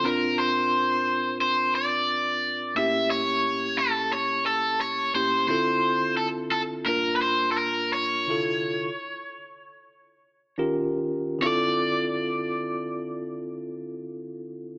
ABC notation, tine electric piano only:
X:1
M:4/4
L:1/8
Q:"Swing 16ths" 1/4=86
K:Dm
V:1 name="Tine electric piano"
[B,,CDFB]8 | [A,,B,^CEG]6- [A,,B,CEG] [A,,B,CEG] | [D,CEFA]4 [G,,B,DFB]4 | [C,D,EFA]2 z4 [_E,_DFGB]2 |
[D,CEFA]8 |]